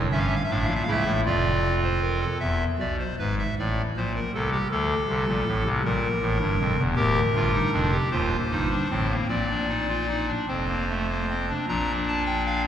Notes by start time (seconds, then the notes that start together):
0.11 G1 G2 C#4 E5
0.19 F5
0.28 E5
0.35 F5
0.44 E5
0.49 A1 A2 D4 F5
0.59 E5
0.65 A#1 A#2 F5
0.75 E5
0.83 F5
0.87 C#2 C#3 E4 E5
1.05 A1 A2
1.25 F1 F2 F4 D5
1.83 C5
2.02 A#4
2.21 A4
2.40 E1 E2 E5
2.79 B1 B2 D5
2.98 C5
3.19 G#1 G#2 B4
3.39 E5
3.59 A1 A2 D5
3.96 A#1 A#2 C5
4.15 A#4
4.34 C2 C3 A4
4.52 G4
4.70 D2 D3 A4
5.09 C2 C3
5.27 A#1 A#2
5.47 A1 A2
5.65 C2 C3
5.84 A#1 A#2 A#4
6.22 A1 A2
6.40 G1 G2
6.60 F1 F2
6.78 E1 E2
6.95 D1 D2 G4 A#4
7.35 G1 G2 F4
7.53 D#4
7.72 F1 F2 D4
7.92 G4
8.11 D#1 D#2 F4 C5
8.50 G1 G2 D#4
8.70 D4
8.89 A1 A2 C4
9.10 A#3
9.28 A#1 A#2 C4 D5
9.50 D4
9.69 D#4
9.88 F4
10.09 D#4
10.27 D4
10.48 F1 F2 C4 C5
10.68 A#3
10.90 A3
11.10 A#3
11.30 C4
11.49 D4
11.68 A#1 A#2 D4 A#5
12.08 A5
12.26 G5
12.46 F5